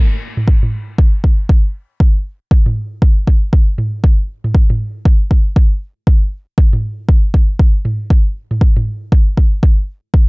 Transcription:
0.37 mid tom
0.48 kick
0.63 mid tom
0.98 kick
1.24 kick
1.49 kick
2.00 kick
2.51 kick
2.66 mid tom
3.02 kick
3.27 kick
3.53 kick
3.78 mid tom
4.04 kick
4.44 mid tom
4.55 kick
4.70 mid tom
5.05 kick
5.31 kick
5.56 kick
6.07 kick
6.58 kick
6.73 mid tom
7.09 kick
7.34 kick
7.59 kick
7.85 mid tom
8.10 kick
8.51 mid tom
8.61 kick
8.76 mid tom
9.12 kick
9.37 kick
9.63 kick
10.14 kick

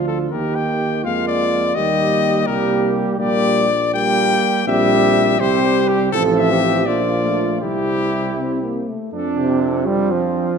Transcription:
Already playing: D2 F3 D4 F4
0.08 A4
0.31 D#2 D#3 A#3 G4 A#4
0.55 G5
1.04 F2 G#3 A#3 F4 F5
1.28 D5
1.75 D#2 G3 A#3 G4 D#5
2.46 C2 G3 A#3 G4 A#4
3.19 A#1 G3 A#3 G4 D5
3.94 G3 A#3 G4 G5
4.66 A#1 G3 C4 G4 E5
5.39 C2 G3 C4 G4 C5
5.88 G4
6.12 A1 F3 C4 A4
6.37 E5
6.51 G4
6.86 A#1 F3 A#3 F4 D5
7.24 A3
7.61 C2 C3 G3 E4 G4
8.38 C4
8.63 A#3
8.88 A3
9.13 F2 C4 D4 A4
9.37 C3 G4
9.62 A4
9.86 G3 C4 D4 F4
10.11 F3

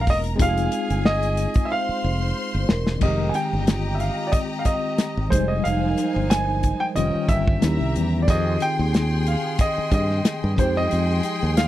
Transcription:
Already playing: G#3 A#3 C#4 F4 A#4 A#5
0.01 F5
0.07 E1 D#5, kick, open hi-hat
0.24 closed hi-hat
0.36 F1 G#3 C4 D#4 G#4 G#5, kick, closed hi-hat
0.40 F4 G4 F5
0.49 G#4
0.57 closed hi-hat
0.72 closed hi-hat
0.90 G1, closed hi-hat
1.05 D#5, snare
1.23 closed hi-hat
1.37 snare, closed hi-hat
1.54 kick, closed hi-hat
1.65 E5
1.70 C5 F5 C6
1.89 muted fingered electric bass stroke
2.04 F1
2.54 G1
2.69 E1 A#4, snare
2.87 snare
2.99 F1 D#3 G#3, kick, crash
3.03 C4 G4 D#5 A#5
3.29 G#5
3.34 G5, closed hi-hat
3.53 G1
3.67 F4, snare, closed hi-hat
3.95 E5
4.00 F5, snare, closed hi-hat
4.27 D5
4.32 C4 D#5, kick, closed hi-hat
4.59 F5
4.65 D#5, kick, closed hi-hat
4.98 snare, closed hi-hat
5.17 G#1
5.29 F1 F3 G#3 D#4 C5 G#5, kick, closed hi-hat
5.34 G3 D#4
5.48 D#5
5.64 F1 D#4 F5, closed hi-hat
5.89 A#4
5.98 closed hi-hat
6.10 C5
6.16 G1
6.30 G#5, snare, closed hi-hat
6.63 kick, closed hi-hat
6.80 G5
6.95 F1 D#3 G3 C#4 F4 A#4 D#5 G5, closed hi-hat
7.15 muted fingered electric bass stroke
7.29 G1 E5, kick, closed hi-hat
7.47 kick
7.61 D#2 D#3 F#3 C#4 E4 G4 E5 A#5, snare, closed hi-hat
7.68 G3
7.81 C2
7.96 E2, closed hi-hat
8.22 D#3 D5
8.27 F2 C4 F4 G4 G#4 D#5 G5 C6, kick, closed hi-hat
8.60 G5, closed hi-hat
8.79 D#2
8.94 snare, closed hi-hat
9.26 F5, closed hi-hat
9.59 D#5, kick, closed hi-hat
9.78 muted fingered electric bass stroke
9.91 G2 D#5, kick, closed hi-hat
10.10 snare
10.25 snare, closed hi-hat
10.44 G2
10.55 F2 F3 G#3 D#4 G#4 C5 G5 C6, kick, closed hi-hat
10.61 G4
10.77 D#5
10.91 F2, closed hi-hat
11.23 closed hi-hat
11.43 D#2
11.57 F5, snare, closed hi-hat

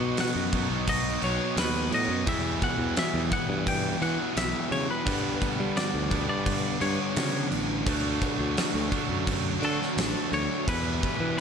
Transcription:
Already playing: B2 F#3 B3 D#4 F#4 D#5 F#5
0.00 B2
0.17 F#5, snare, crash
0.36 F#2
0.52 B2 F#3 B3 D#4, kick, crash
0.70 B1
0.87 D#5, kick, crash
1.22 B1 B2 F#3 B3 C#5, crash
1.57 D#2 B2 F#3 B3 B4, snare, crash
1.91 A2 D#5, crash
2.08 F#2
2.26 E2 B2 E3 G3 B3 E4 G4 E5, kick, crash
2.30 E3
2.62 F#5, kick, crash
2.78 E2
2.96 E5, snare, crash
3.14 E2
3.30 E3 G3 B3 E4 F#5, kick, crash
3.49 G2
3.67 G5, kick, crash
4.00 E2 B2 E3 F#5, crash
4.35 B1 E2 B2 E3 E5, snare, crash
4.71 C#3 C#5, crash
4.90 B4
5.05 G2 D3 G3 B3 D4, kick, crash
5.09 G3 B4
5.42 kick, crash
5.60 G3
5.77 D5, snare, crash
5.94 D2
6.10 G2 D3 G3 B3 D4, kick, crash
6.29 G2 D5
6.46 kick, crash
6.80 G2 D3 G3 C#5, crash
7.14 G2 C#3 D3 G3, snare, crash
7.52 A1, crash
7.84 D2 D3 F#3 A3 D4, kick, crash
7.88 D3 A3 D4 F#4
8.22 kick, crash
8.39 D2
8.57 snare, crash
8.74 D2
8.91 D3 F#3 A3 D4, kick, crash
9.09 F#2
9.27 kick, crash
9.60 D3 A3 D4, crash
9.64 D3 A4
9.82 snare
9.95 A1 D3 A3, snare, crash
9.99 D4
10.32 D2 C#5, crash
10.65 E2 B2 E3 G3 B3 B4, kick, crash
10.69 B3 E4 G4
11.03 kick, crash
11.20 E3

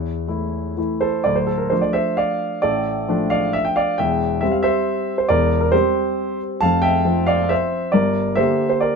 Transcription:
Already playing: E2 C#5
0.28 E3 A3 E4
0.77 E3 A3 E4
1.01 A4 C5
1.24 D1 D2 D5
1.36 C5
1.47 A4
1.58 A#4
1.70 F3 A3 D4 C5
1.81 D5
1.93 C5 E5
2.17 D5 F5
2.62 A1 A2 A4 D5
3.08 F3 A3 D4
3.30 D5 F5
3.53 E5
3.65 G5
3.76 D5 F5
3.98 E1 E2 E5 G5
4.41 G3 C4 E5
4.52 F5
4.63 C5 E5
5.18 C5
5.29 E1 E2 A#4 D5
5.61 A#4
5.72 G3 C4 G4 C5
6.61 F1 F2 F5 A5
6.82 E5 G5
7.05 F3 C4
7.27 D5 F5
7.49 C5 E5
7.92 G1 G2 A#4 D5
8.35 D3 A#3 G4 C5 E5
8.69 C5
8.81 A#4 D5

